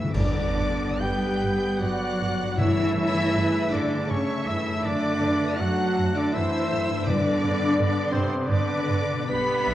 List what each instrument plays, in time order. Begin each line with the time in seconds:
Already playing: harp G2 D3 A3 F#4 A4 A5, cello section E3, french horn section E4, clarinet E4, violin section E5 E6, flute E5, oboe E5
0.01 timpani D3, harp B3
0.06 harp D4
0.10 double bass section G2, trombone section D3 B3, cello section D3, clarinet D4, french horn section D4, harp G4, oboe D5
0.14 timpani G2, flute D5, violin section D5 D6, concert bass drum, crash
0.58 double bass section G2
0.99 double bass section G2, cello section G3, clarinet G4, french horn section G4, viola section B4, oboe G5, violin section G5 G6, flute G5
1.41 double bass section G2
1.78 double bass section G2, cello section F#3, french horn section F#4, clarinet F#4, viola section D5, oboe F#5, violin section F#5 F#6, flute F#5
2.20 double bass section G2
2.42 harp G2
2.46 harp A3
2.51 harp C#4
2.55 timpani G2, harp E4, french horn section E4, clarinet E4, oboe E5
2.59 double bass section G2, trombone section C#3 A3, cello section E3, viola section C#5, flute E5, violin section E5 E6
2.96 double bass section G2
3.34 double bass section G2, viola section B4
3.71 double bass section G2, cello section D3, french horn section D4, clarinet D4, viola section A4, flute D5, oboe D5, violin section D5 D6
4.09 double bass section G2, cello section C#3, french horn section C#4, clarinet C#4, flute C#5, oboe C#5, violin section C#5 C#6, viola section E5
4.46 double bass section G2, cello section E3, clarinet E4, french horn section E4, flute E5, oboe E5, violin section E6
4.50 violin section E5
4.67 harp F#2
4.71 harp A3
4.76 harp D4
4.80 double bass section F#2, french horn section D4, clarinet D4, harp A4, viola section D5
4.85 cello section D3, trombone section D3, flute D5, oboe D5, violin section D5 D6
5.21 double bass section F#2, viola section B4
5.57 double bass section F#2, cello section F#3, french horn section F#4, clarinet F#4, viola section A4, flute F#5, violin section F#5 F#6, oboe F#5
5.96 double bass section F#2
6.14 cello section D3, french horn section D4, clarinet D4, flute D5, violin section D5 D6, oboe D5
6.33 double bass section F#2, cello section E3, french horn section E4, clarinet E4, viola section C5, flute E5, oboe E5, violin section E5 E6
6.72 double bass section F#2
6.90 harp G2
6.95 harp B3
6.99 harp D4
7.03 timpani G2, cello section D3, french horn section D4, harp G4
7.07 double bass section G2, trombone section B3, clarinet D4, viola section B4, flute D5, violin section D5 D6, oboe D5
7.42 double bass section G2, viola section D5
7.78 double bass section G2
8.10 double bass section G2, cello section C3, french horn section C4, clarinet C4, violin section C5 C6, flute C5, oboe C5
8.46 double bass section G2, cello section D3, clarinet D4, french horn section D4, viola section B4, violin section D5 D6, flute D5
8.50 oboe D5
8.88 double bass section G2
9.12 harp B2
9.17 harp B3
9.21 harp D4
9.25 harp G4, clarinet B4, violin section B5
9.30 double bass section B1, trombone section D3 G3, cello section B3, viola section G4, french horn section B4, flute B5, oboe B5, violin section B6
9.66 double bass section B1, viola section E5